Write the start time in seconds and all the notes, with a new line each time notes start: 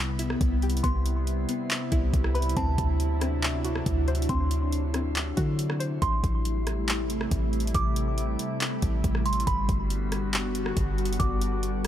Already playing: C2 C3 G3 B3 E4
0.19 E4, closed hi-hat
0.30 cross-stick
0.41 C2, kick, closed hi-hat
0.62 G4, closed hi-hat
0.70 closed hi-hat
0.77 closed hi-hat
0.83 C2 B3 C6, kick, closed hi-hat
1.06 closed hi-hat
1.27 closed hi-hat
1.49 B3, closed hi-hat
1.70 clap, closed hi-hat
1.92 C2 E4, kick, closed hi-hat
2.14 C2, kick, closed hi-hat
2.24 cross-stick
2.35 B4 B5, closed hi-hat
2.42 closed hi-hat
2.49 closed hi-hat
2.57 D2 F#3 C4 D4 A5, kick, closed hi-hat
2.78 D2, kick, closed hi-hat
3.00 closed hi-hat
3.21 C4, cross-stick, closed hi-hat
3.43 clap, closed hi-hat
3.64 F#4, closed hi-hat
3.76 cross-stick
3.86 D2, kick, closed hi-hat
4.08 C5, closed hi-hat
4.15 closed hi-hat
4.22 closed hi-hat
4.29 D2 C4 C6, kick, closed hi-hat
4.51 closed hi-hat
4.72 closed hi-hat
4.94 C4, cross-stick, closed hi-hat
5.16 clap, closed hi-hat
5.37 D3 F#4, kick, closed hi-hat
5.59 closed hi-hat
5.70 cross-stick
5.80 C5, closed hi-hat
6.02 A1 C3 G3 A3 E4 C6, kick, closed hi-hat
6.24 A1, kick, closed hi-hat
6.45 closed hi-hat
6.67 cross-stick, closed hi-hat
6.88 clap, closed hi-hat
7.10 closed hi-hat
7.21 cross-stick
7.31 A1, kick, closed hi-hat
7.53 closed hi-hat
7.60 closed hi-hat
7.67 closed hi-hat
7.75 A1 D6, kick, closed hi-hat
7.96 closed hi-hat
8.18 closed hi-hat
8.39 closed hi-hat
8.61 clap, closed hi-hat
8.82 A1, kick, closed hi-hat
9.04 A1, kick, closed hi-hat
9.15 cross-stick
9.26 C6, closed hi-hat
9.33 closed hi-hat
9.40 closed hi-hat
9.47 G1 D3 B3 F#4 B5, kick, closed hi-hat
9.69 G1, kick, closed hi-hat
9.90 closed hi-hat
10.12 cross-stick, closed hi-hat
10.34 clap, closed hi-hat
10.55 closed hi-hat
10.66 cross-stick
10.77 G1, kick, closed hi-hat
10.98 closed hi-hat
11.05 closed hi-hat
11.13 closed hi-hat
11.20 G1 D6, kick, closed hi-hat
11.41 closed hi-hat
11.63 closed hi-hat